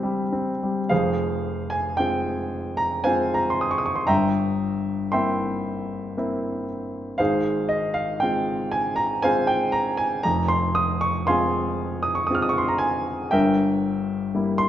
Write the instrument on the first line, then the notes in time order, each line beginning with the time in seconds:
grand piano
Already playing: C2 C3 G3 C4 E4 G4
0.03 G3
0.32 C4
0.63 G3
0.89 F1 F2 G#4 C5 F5
1.70 G#5
1.97 G#3 C4 F4 G5
2.77 A#5
3.04 G#3 C4 F4 C5 F5 G#5
3.34 A#5
3.50 C6
3.61 D#6
3.71 C#6
3.78 D#6
3.86 C#6
3.95 C6
4.07 G1 G2 E5 G5 A#5
5.12 A#3 C4 E4 E5 G5 C6
6.17 A#3 C4 E4
7.18 G#1 G#2 G#4 C5 F5
7.69 D#5
7.94 F5
8.20 G#3 C4 F4 G5
8.71 G#5
8.96 A#5
9.22 G#3 C4 F4 C5 F5 G#5
9.47 G5
9.72 A#5
9.97 G#5
10.23 F1 F2 A#5
10.48 C6
10.75 D#6
11.01 C#6
11.27 G#3 C4 F4 F5 G#5 C6
12.03 D#6
12.15 C#6
12.27 G#3 C4 D#6
12.31 F4 F6
12.42 D#6
12.49 C#6
12.58 C6
12.68 A#5
12.78 G#5
13.31 G1 G2 A#4 E5 G5
14.35 G3 A#3 E4
14.58 C6